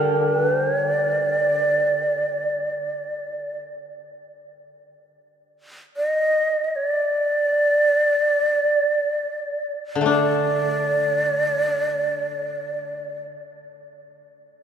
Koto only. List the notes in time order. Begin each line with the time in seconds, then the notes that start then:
Already playing: D3 G3 D4 G4 A4 D5
9.95 D3
10.01 A3
10.06 D4